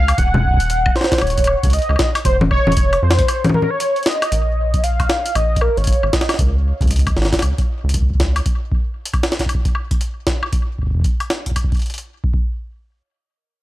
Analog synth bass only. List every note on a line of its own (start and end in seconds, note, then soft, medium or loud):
0.00 0.13 C#2 medium
0.18 0.91 D#1 loud
1.22 1.55 D#1 medium
1.63 1.79 C#2 loud
1.89 1.96 C#2 loud
2.25 2.59 F1 loud
2.67 2.98 F1 loud
3.03 3.22 F2 loud
4.32 5.04 A#1 loud
5.35 5.69 A#1 medium
5.77 5.93 G#1 loud
6.03 6.10 G#1 medium
6.39 6.72 C#2 loud
6.81 7.11 C#2 loud
7.16 7.36 G#1 loud
7.42 7.53 C#2 medium
7.84 8.41 C#2 medium